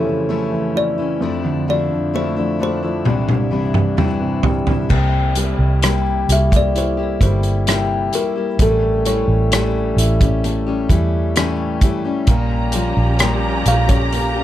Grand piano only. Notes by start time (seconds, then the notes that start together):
Already playing: F2 C#3 E3 C#4 E4
0.06 C#3
0.29 A3
0.52 E3
0.75 E4
0.99 E3
1.21 F2
1.44 D3
1.69 F3
1.91 D3
2.15 A3
2.38 F3
2.61 D4
2.84 F3
3.07 C2
3.30 G2
3.52 C3
3.74 G2
3.97 E3
4.22 C3
4.44 G3
4.69 C3
4.92 C3
5.37 G3
5.84 G4
6.30 G3
6.75 E4
7.21 G3
7.68 E4
8.16 G3
8.61 A3
9.06 E4
9.52 A3
9.98 E4
10.45 A3
10.90 E4
11.36 A3
11.82 E4
12.29 A#3
12.75 F4
13.21 A#3
13.68 F4
14.13 A#3